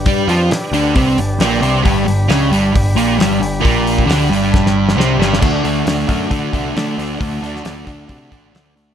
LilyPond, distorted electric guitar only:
\new Staff \with { instrumentName = "Distorted electric guitar" } { \time 4/4 \key g \major \tempo 4 = 134 <g g'>8 <f f'>8 r8 <d d'>8 <c c'>8 g,8 <bes, bes>8 <c c'>8 | <g, g>8 g,8 <cis cis'>8 <g, g>8 g,8 <bes, bes>8 <g, g>8 g,8 | <bes, bes>4 <d d'>8 <g, g>4. <c c'>8 <g, g>8 | <d a d'>8 <d a d'>8 <d a d'>8 <d a d'>8 <d a d'>8 <d a d'>8 <d a d'>8 <d a d'>8 |
<d a d'>8 <d a d'>8 <d a d'>8 <d a d'>8 <d a d'>8 <d a d'>8 <d a d'>8 <d a d'>8 | }